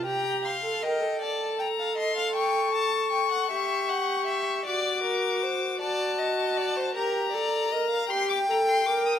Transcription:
0.05 G4 G5 A#5
0.45 F5 C6
0.64 A4
0.83 A#4 D#5 G5
1.01 A4
1.22 D5 A5
1.59 G5 A#5
1.80 F5
1.98 D#5 C6
2.17 F5
2.35 G5 C#6
2.75 A5
3.13 G5
3.32 F#5
3.51 G4 E5
3.89 F#5
4.27 E5
4.66 F#4 D5 D6
5.04 A#4
5.43 C5
5.80 F#4 D5 A5
6.19 D#5
6.57 D5
6.77 C5
6.95 G4 A#4 A#5
7.32 A4 D5
7.72 A#4 D#5
7.90 F5
8.10 G4 G5 C6
8.29 D6
8.49 A4 A#5
8.69 C6
8.86 A#4 D6
9.06 D#6

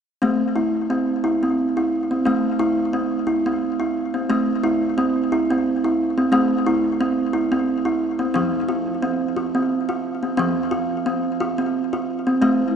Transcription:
0.22 A3 C4
0.56 E4
0.90 C4
1.24 E4
1.43 C4
1.77 E4
2.11 C4
2.25 A3 C4
2.59 E4
2.93 C4
3.27 E4
3.46 C4
3.80 E4
4.14 C4
4.30 A3 C4
4.64 E4
4.98 C4
5.32 E4
5.51 C4
5.84 E4
6.18 C4
6.32 A3 C4
6.66 E4
7.01 C4
7.33 E4
7.52 C4
7.85 E4
8.19 C4
8.34 F3 C4
8.69 F4
9.02 C4
9.36 F4
9.55 C4
9.89 F4
10.23 C4
10.37 F3 C4
10.71 F4
11.06 C4
11.40 F4
11.58 C4
11.93 F4
12.27 C4
12.42 A3 C4

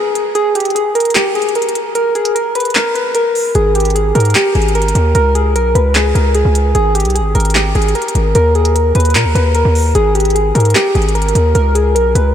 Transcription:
Already playing: G#4
0.15 closed hi-hat
0.35 G#4, closed hi-hat
0.55 G4, closed hi-hat
0.60 closed hi-hat
0.65 closed hi-hat
0.70 closed hi-hat
0.75 G#4, closed hi-hat
0.95 A#4, closed hi-hat
1.00 closed hi-hat
1.05 closed hi-hat
1.10 closed hi-hat
1.15 G4, clap, closed hi-hat
1.35 G#4, closed hi-hat
1.42 closed hi-hat
1.49 closed hi-hat
1.55 A#4, closed hi-hat
1.62 closed hi-hat
1.69 closed hi-hat
1.75 closed hi-hat
1.95 A#4, closed hi-hat
2.15 G#4, closed hi-hat
2.25 closed hi-hat
2.35 A#4, closed hi-hat
2.55 B4, closed hi-hat
2.60 closed hi-hat
2.65 closed hi-hat
2.70 closed hi-hat
2.75 A#4, clap, closed hi-hat
2.95 B4, closed hi-hat
3.15 A#4, closed hi-hat
3.35 open hi-hat
3.55 G#1 G#4, closed hi-hat
3.75 G4, closed hi-hat
3.80 closed hi-hat
3.85 closed hi-hat
3.90 closed hi-hat
3.95 G#4, closed hi-hat
4.15 G#2 A#4, closed hi-hat
4.20 closed hi-hat
4.25 closed hi-hat
4.30 closed hi-hat
4.35 G4, clap, closed hi-hat
4.55 G#1 G#4, closed hi-hat
4.62 closed hi-hat
4.68 closed hi-hat
4.75 A#4, closed hi-hat
4.82 closed hi-hat
4.88 closed hi-hat
4.95 D#2, closed hi-hat
5.15 C#2 A#4, closed hi-hat
5.35 G#4, closed hi-hat
5.55 B1 A#4, closed hi-hat
5.75 C#2 B4, closed hi-hat
5.95 G#4, clap, closed hi-hat
6.15 C#2 A#4, closed hi-hat
6.35 G#4, closed hi-hat
6.45 C#2
6.55 closed hi-hat
6.75 G#1 G#4, closed hi-hat
6.95 G4, closed hi-hat
7.00 closed hi-hat
7.05 B1, closed hi-hat
7.10 closed hi-hat
7.15 G#4, closed hi-hat
7.20 G#1
7.35 G#1 A#4, closed hi-hat
7.40 closed hi-hat
7.45 closed hi-hat
7.50 closed hi-hat
7.55 G4, clap, closed hi-hat
7.75 G#1 G#4, closed hi-hat
7.82 closed hi-hat
7.88 closed hi-hat
7.95 A#4, closed hi-hat
8.02 closed hi-hat
8.08 closed hi-hat
8.15 G#1, closed hi-hat
8.35 D#2 A#4, closed hi-hat
8.55 G#4, closed hi-hat
8.65 closed hi-hat
8.75 A#4, closed hi-hat
8.95 D#2 B4, closed hi-hat
9.00 closed hi-hat
9.05 closed hi-hat
9.10 closed hi-hat
9.15 A#2 A#4, clap, closed hi-hat
9.25 D#2
9.35 D#2 B4, closed hi-hat
9.55 A#4, closed hi-hat
9.65 D#2
9.75 open hi-hat
9.95 G#1 G#4, closed hi-hat
10.15 G4, closed hi-hat
10.20 closed hi-hat
10.25 closed hi-hat
10.30 closed hi-hat
10.35 G#4, closed hi-hat
10.55 G#2 A#4, closed hi-hat
10.60 closed hi-hat
10.65 closed hi-hat
10.70 closed hi-hat
10.75 G4, clap, closed hi-hat
10.95 G#1 G#4, closed hi-hat
11.02 closed hi-hat
11.09 closed hi-hat
11.15 A#4, closed hi-hat
11.22 closed hi-hat
11.28 closed hi-hat
11.35 D#2, closed hi-hat
11.55 C#2 A#4, closed hi-hat
11.75 G#4, closed hi-hat
11.95 B1 A#4, closed hi-hat
12.15 C#2 B4, closed hi-hat

